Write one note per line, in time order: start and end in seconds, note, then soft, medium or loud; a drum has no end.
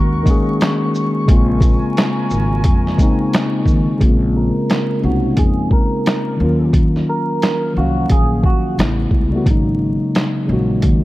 0.00 0.22 D#2 medium
0.00 0.23 D#3 medium
0.00 0.25 G#3 medium
0.00 0.27 A#3 medium
0.00 0.29 C#4 medium
0.00 1.29 F#4 loud
0.00 0.99 A#4 medium
0.00 1.05 F#5 medium
0.00 3.96 C#6 medium
0.23 1.22 D#3 medium
0.23 1.23 G#3 medium
0.23 1.24 A#3 medium
0.23 kick loud
0.23 closed hi-hat soft
0.23 shaker soft
0.29 1.25 C#4 medium
0.29 1.26 G#4 loud
0.61 snare loud
0.61 clap medium
0.61 closed hi-hat medium
0.95 shaker soft
1.26 1.77 A#1 loud
1.26 2.58 C#3 medium
1.26 2.58 G#3 medium
1.26 2.59 A#3 medium
1.26 3.98 A#4 medium
1.26 3.98 G#5 medium
1.26 kick loud
1.26 closed hi-hat medium
1.31 2.60 C4 medium
1.31 2.61 F4 loud
1.61 kick medium
1.61 closed hi-hat medium
1.61 shaker medium
1.97 snare loud
1.97 clap medium
1.97 closed hi-hat medium
2.30 2.61 G#1 medium
2.30 shaker soft
2.64 2.95 F2 medium
2.64 kick medium
2.64 closed hi-hat medium
2.87 snare soft
2.96 3.95 C#3 medium
2.96 3.96 G#3 medium
2.96 3.97 A#3 medium
2.96 kick medium
2.96 closed hi-hat soft
2.96 shaker soft
3.01 3.98 C4 medium
3.01 3.99 D#4 loud
3.33 snare loud
3.33 clap medium
3.33 closed hi-hat medium
3.65 3.85 D#2 medium
3.65 kick medium
3.65 shaker soft
3.98 4.49 A#1 medium
3.98 4.97 C#3 medium
3.98 4.98 G#3 medium
3.98 4.99 A#3 medium
3.98 kick loud
3.98 closed hi-hat medium
4.03 5.00 C4 medium
4.03 5.01 F4 medium
4.37 5.00 A#4 medium
4.70 snare medium
4.70 clap medium
4.70 closed hi-hat medium
5.00 5.33 C2 medium
5.00 6.33 G#3 medium
5.00 6.34 A#3 medium
5.00 6.32 C#4 medium
5.05 6.35 C4 medium
5.05 6.36 D#4 medium
5.05 5.35 F#4 medium
5.37 5.67 F2 medium
5.37 5.68 G#4 medium
5.37 kick medium
5.37 closed hi-hat medium
5.71 6.70 A#4 medium
5.71 kick medium
6.06 snare loud
6.06 clap medium
6.06 closed hi-hat medium
6.37 7.00 D#2 medium
6.37 7.69 D#3 medium
6.37 7.69 F#3 medium
6.37 7.70 A#3 medium
6.42 7.71 C#4 medium
6.42 7.72 F4 medium
6.73 kick loud
6.73 closed hi-hat medium
6.96 snare soft
7.09 7.72 A#4 medium
7.42 snare loud
7.42 clap medium
7.42 closed hi-hat medium
7.73 8.06 C2 medium
7.73 8.77 D#3 medium
7.73 7.83 F3 soft
7.73 8.78 A#3 medium
7.78 8.81 F#3 medium
7.78 8.79 C#4 medium
7.78 8.07 F#4 medium
7.78 8.80 F5 medium
8.10 8.40 A#1 medium
8.10 8.41 G#4 medium
8.10 kick medium
8.10 closed hi-hat medium
8.44 8.75 F#4 medium
8.44 kick medium
8.75 9.08 A1 medium
8.75 9.28 C#3 medium
8.75 9.29 G3 medium
8.75 9.30 A3 medium
8.75 closed hi-hat medium
8.80 9.31 B3 medium
8.80 9.32 E4 medium
8.80 snare loud
8.80 clap medium
9.11 9.30 C#2 medium
9.11 kick medium
9.30 9.44 C#3 medium
9.30 9.45 G3 medium
9.30 9.46 A3 medium
9.36 9.46 B3 medium
9.36 9.47 F#4 medium
9.44 9.95 G#1 medium
9.44 9.53 C3 medium
9.44 10.44 F#3 medium
9.44 10.44 G#3 medium
9.44 kick loud
9.44 closed hi-hat medium
9.49 10.45 C#3 medium
9.49 10.45 A#3 medium
9.49 10.46 D#4 medium
10.15 snare loud
10.15 clap medium
10.15 closed hi-hat medium
10.46 10.79 A#1 medium
10.46 11.04 C#3 medium
10.46 11.04 F#3 medium
10.46 11.04 G#3 medium
10.51 11.04 A#3 medium
10.51 11.04 F#4 medium
10.82 11.04 D#2 medium
10.82 kick medium
10.82 closed hi-hat medium